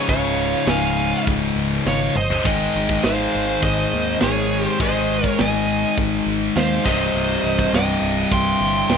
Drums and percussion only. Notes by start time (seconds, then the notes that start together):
0.08 kick, open hi-hat
0.39 open hi-hat
0.67 snare, open hi-hat
0.97 open hi-hat
1.27 kick, open hi-hat
1.56 open hi-hat
1.86 snare
2.15 mid tom
2.30 floor tom
2.45 kick, crash
2.75 open hi-hat
2.89 kick, snare
3.04 snare, open hi-hat
3.32 open hi-hat
3.63 kick, open hi-hat
3.92 open hi-hat
4.21 snare, open hi-hat
4.50 open hi-hat
4.80 kick, open hi-hat
5.09 open hi-hat
5.24 kick, snare
5.39 snare, open hi-hat
5.68 open hi-hat
5.98 kick, open hi-hat
6.27 open hi-hat
6.57 snare, open hi-hat
6.86 kick, crash
7.45 open hi-hat
7.59 kick, snare
7.74 snare, open hi-hat
8.02 open hi-hat
8.32 kick, open hi-hat
8.61 open hi-hat
8.90 snare, open hi-hat